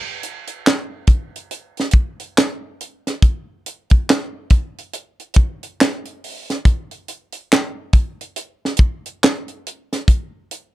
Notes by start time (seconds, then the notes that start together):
0.23 closed hi-hat
0.47 closed hi-hat
0.67 snare, clap, closed hi-hat
1.07 kick, closed hi-hat
1.36 closed hi-hat
1.51 closed hi-hat
1.77 snare, closed hi-hat
1.91 kick, closed hi-hat
2.20 closed hi-hat
2.38 snare, clap, closed hi-hat
2.80 closed hi-hat
3.07 snare, closed hi-hat
3.22 kick, closed hi-hat
3.66 closed hi-hat
3.90 kick, closed hi-hat
4.10 snare, clap, closed hi-hat
4.50 kick, closed hi-hat
4.78 closed hi-hat
4.93 closed hi-hat
5.20 closed hi-hat
5.34 kick, closed hi-hat
5.63 closed hi-hat
5.81 snare, clap, closed hi-hat
6.05 closed hi-hat
6.24 open hi-hat
6.50 snare, closed hi-hat
6.65 kick, closed hi-hat
6.91 closed hi-hat
7.08 closed hi-hat
7.32 closed hi-hat
7.53 snare, clap, closed hi-hat
7.93 kick, closed hi-hat
8.21 closed hi-hat
8.36 closed hi-hat
8.65 snare
8.77 kick, closed hi-hat
9.06 closed hi-hat
9.24 snare, clap, closed hi-hat
9.48 closed hi-hat
9.67 closed hi-hat
9.93 snare, closed hi-hat
10.08 kick, closed hi-hat
10.51 closed hi-hat